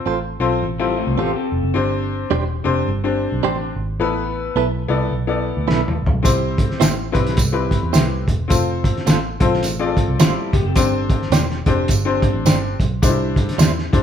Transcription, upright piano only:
0.40 0.63 C4 medium
0.40 0.62 F4 medium
0.40 0.63 A4 medium
0.40 0.63 C5 medium
0.79 1.47 C4 medium
0.79 1.47 F4 medium
0.79 1.47 A4 medium
0.79 1.47 C5 medium
1.74 2.30 C4 medium
1.74 2.31 D4 medium
1.74 2.31 G4 medium
1.74 2.31 C5 loud
2.64 2.87 C4 medium
2.64 2.87 D4 medium
2.64 2.87 G4 medium
2.64 2.88 C5 loud
3.04 3.71 C4 medium
3.04 3.71 D4 medium
3.04 3.72 G4 medium
3.04 3.72 C5 medium
4.00 4.56 B3 medium
4.00 4.56 E4 medium
4.00 4.56 A4 medium
4.00 4.56 B4 loud
4.88 5.12 B3 medium
4.88 5.12 E4 medium
4.88 5.12 A4 medium
4.88 5.12 D5 medium
5.27 5.96 B3 medium
5.27 5.96 E4 medium
5.27 5.96 A4 medium
5.27 5.96 D5 medium
6.23 6.80 C4 medium
6.23 6.81 E4 medium
6.23 6.81 G4 medium
6.23 6.81 C5 loud
7.12 7.36 C4 medium
7.12 7.36 E4 medium
7.12 7.37 G4 medium
7.12 7.37 B4 loud
7.52 8.21 C4 medium
7.52 8.21 E4 medium
7.52 8.21 G4 medium
7.52 8.22 B4 medium
8.48 9.06 C4 medium
8.48 9.06 F4 medium
8.48 9.06 A4 medium
8.48 9.06 C5 medium
9.40 9.63 C4 medium
9.40 9.63 F4 medium
9.40 9.63 A4 medium
9.40 9.64 C5 loud
9.79 10.47 C4 medium
9.79 10.48 F4 medium
9.79 9.88 G#4 medium
9.79 10.48 D5 medium
9.86 10.51 A4 medium
10.76 11.32 C4 medium
10.76 11.32 D4 medium
10.76 11.33 G4 medium
10.76 11.33 C5 medium
11.66 11.89 C4 medium
11.66 11.89 D4 medium
11.66 11.90 G4 medium
11.66 11.90 C5 loud
12.05 12.73 C4 medium
12.05 12.73 D4 medium
12.05 12.74 G4 medium
12.05 12.74 C5 medium
13.02 13.59 D4 medium
13.02 13.10 D#4 medium
13.02 13.59 G4 medium
13.02 13.59 C5 loud
13.09 13.62 E4 medium
13.93 14.03 D4 medium
13.93 14.03 E4 medium
13.93 14.03 G4 medium
13.93 14.03 C5 medium

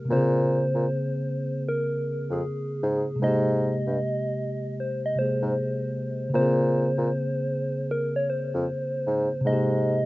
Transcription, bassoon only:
0.10 0.66 A#2 loud
0.74 0.86 A#2 medium
2.30 2.42 F2 medium
2.83 3.05 G#2 medium
3.22 3.77 G#2 medium
3.86 3.98 G2 medium
5.42 5.54 G#2 medium
6.33 6.89 A#2 medium
6.98 7.10 A#2 medium
8.54 8.66 F2 medium
9.07 9.28 G#2 medium
9.45 10.01 G#2 medium

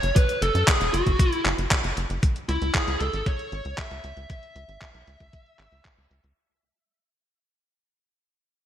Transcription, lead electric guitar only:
0.00 0.16 C#5 loud
0.16 0.43 B4 loud
0.42 0.67 A4 medium
0.68 0.92 G#4 medium
0.94 1.42 F#4 medium
2.49 2.76 E4 medium
2.75 3.00 G#4 medium
3.01 3.27 A4 medium
3.27 3.80 C#5 loud
3.79 4.29 E5 loud
4.30 5.81 E5 medium

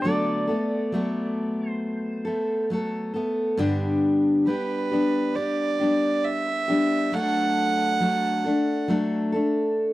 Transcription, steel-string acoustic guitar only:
0.04 0.48 D3 medium
0.04 0.49 F#3 medium
0.04 0.49 A3 medium
0.04 0.48 B3 medium
0.04 0.46 A4 medium
0.47 0.92 A3 soft
0.47 0.93 B3 soft
0.47 0.92 A4 soft
0.92 2.25 F#3 soft
0.92 2.26 A3 medium
0.92 2.26 B3 medium
0.92 2.24 A4 medium
2.25 2.70 A3 soft
2.25 2.70 B3 soft
2.25 2.69 A4 soft
2.70 3.14 F#3 medium
2.70 3.15 A3 medium
2.70 3.15 B3 medium
2.70 3.12 A4 medium
3.14 3.59 A3 soft
3.14 3.58 B3 soft
3.14 3.58 A4 soft
3.57 4.46 G2 medium
3.57 4.47 D3 medium
3.57 4.46 G3 medium
3.57 4.47 B3 medium
3.57 4.49 D4 medium
3.57 4.48 G4 medium
4.47 4.91 G3 medium
4.47 4.92 B3 medium
4.47 4.92 D4 medium
4.47 4.90 G4 medium
4.91 5.34 G3 soft
4.91 5.35 B3 soft
4.91 5.36 D4 soft
4.91 5.35 G4 soft
5.35 5.79 G3 medium
5.35 5.80 B3 medium
5.35 5.80 D4 medium
5.35 5.78 G4 medium
5.80 6.70 G3 soft
5.80 6.69 B3 soft
5.80 6.69 D4 soft
5.80 6.67 G4 soft
6.68 7.12 G3 soft
6.68 7.13 B3 soft
6.68 7.12 D4 medium
6.68 7.12 G4 soft
7.12 7.99 F#3 medium
7.12 8.00 A3 medium
7.12 8.02 D4 medium
7.12 8.02 A4 medium
8.00 8.45 F#3 medium
8.00 8.45 A3 medium
8.00 8.45 D4 medium
8.00 8.43 A4 medium
8.44 8.88 A3 soft
8.44 8.89 D4 medium
8.44 8.89 A4 medium
8.88 9.33 F#3 medium
8.88 9.34 A3 medium
8.88 9.33 D4 medium
8.88 9.31 A4 medium
9.32 9.93 A3 soft
9.32 9.93 D4 soft
9.32 9.93 A4 medium

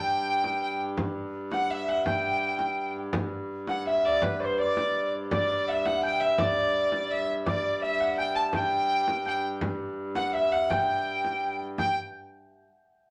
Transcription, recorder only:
0.00 0.81 G5 loud
1.53 1.73 F#5 medium
1.71 2.07 E5 medium
2.08 2.93 G5 medium
3.69 3.85 F#5 medium
3.87 4.03 E5 medium
4.06 4.24 D5 medium
4.22 4.41 B4 medium
4.40 4.45 D5 medium
4.44 4.60 C5 medium
4.58 5.12 D5 loud
5.31 5.64 D5 medium
5.67 5.73 F#5 loud
5.72 5.87 E5 loud
5.86 6.03 F#5 loud
6.04 6.20 G5 medium
6.24 6.39 E5 medium
6.41 7.26 D5 loud
7.49 7.84 D5 loud
7.82 8.02 E5 loud
8.00 8.20 F#5 loud
8.18 8.38 G5 medium
8.36 8.54 A5 loud
8.54 9.40 G5 loud
10.15 10.35 F#5 medium
10.33 10.50 E5 medium
10.51 10.57 F#5 medium
10.69 11.55 G5 loud
11.78 11.95 G5 medium

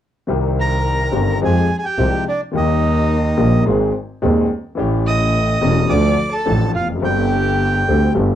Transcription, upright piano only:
0.27 1.10 C2 medium
0.27 1.10 C3 medium
0.27 1.09 D#3 medium
0.27 1.10 G3 medium
0.27 1.10 C4 soft
0.27 1.11 G4 medium
1.12 1.37 G1 medium
1.12 1.37 G2 medium
1.12 1.37 D#3 soft
1.12 1.37 G3 soft
1.12 1.37 C4 soft
1.12 1.38 G4 medium
1.42 1.66 F2 medium
1.42 1.66 F3 medium
1.42 1.66 G#3 medium
1.42 1.66 C4 medium
1.42 1.66 G4 medium
1.98 2.22 C2 medium
1.98 2.22 C3 medium
1.98 2.22 F3 medium
1.98 2.23 G#3 soft
1.98 2.23 C4 soft
1.98 2.23 G4 medium
2.51 3.34 D#2 medium
2.51 2.53 D#3 medium
2.51 3.35 D#3 medium
2.51 3.34 G3 medium
2.51 3.35 A#3 medium
2.55 3.35 G4 medium
3.37 3.62 A#1 medium
3.37 3.62 A#2 medium
3.37 3.62 D#3 medium
3.37 3.62 G3 soft
3.37 3.62 A#3 medium
3.37 3.62 G4 medium
3.66 3.90 G#1 medium
3.66 3.90 G#2 medium
3.66 3.90 D#3 medium
3.66 3.90 G#3 medium
3.66 3.90 C4 medium
3.66 3.90 G#4 medium
4.22 4.46 D#1 medium
4.22 4.46 D#2 medium
4.22 4.46 D#3 medium
4.22 4.46 G#3 medium
4.22 4.46 C4 medium
4.22 4.46 G#4 medium
4.75 5.58 A1 medium
4.75 5.58 A2 medium
4.75 5.57 E3 medium
4.75 5.57 A3 medium
4.75 5.58 C#4 medium
4.79 5.59 G4 medium
5.61 5.86 E1 medium
5.61 5.85 E2 medium
5.61 5.86 E3 medium
5.61 5.86 A3 medium
5.61 5.86 C#4 medium
5.61 5.86 G4 medium
5.89 6.13 D2 medium
5.89 6.14 D3 medium
5.89 6.14 F3 medium
5.89 6.14 A3 medium
5.89 6.14 D4 medium
5.89 6.14 A4 medium
6.46 6.70 A1 medium
6.46 6.70 A2 medium
6.46 6.70 F3 medium
6.46 6.70 A3 medium
6.46 6.70 D4 soft
6.46 6.70 A4 medium
6.81 6.88 E2 soft
6.89 6.96 F2 soft
6.95 7.03 F#2 medium
7.00 7.84 G1 medium
7.00 7.83 G2 medium
7.00 7.83 D3 medium
7.00 7.83 G3 medium
7.00 7.84 C4 medium
7.00 7.85 G4 medium
7.88 8.12 D2 medium
7.88 8.12 D3 medium
7.88 8.12 G3 soft
7.88 8.12 C4 soft
7.88 8.12 G4 medium
8.14 8.35 G1 medium
8.14 8.35 G2 medium
8.14 8.35 D3 medium
8.14 8.35 G3 medium
8.14 8.35 B3 soft
8.14 8.35 G4 medium

